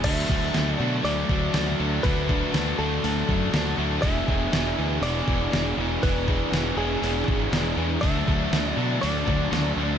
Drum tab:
CC |x---------------|----------------|----------------|----------------|
HH |o---o---o---o---|o---o---o---o---|o---o---o---o---|o---o---o---o---|
SD |----o-------oo--|----o-------o---|----o-------o---|----o-------o---|
BD |o-o-------o-----|o-o-------o-----|o-o-------o-----|o-o-------o-----|

CC |----------------|
HH |o---o---o---o---|
SD |----o-------o---|
BD |o-o-------o-----|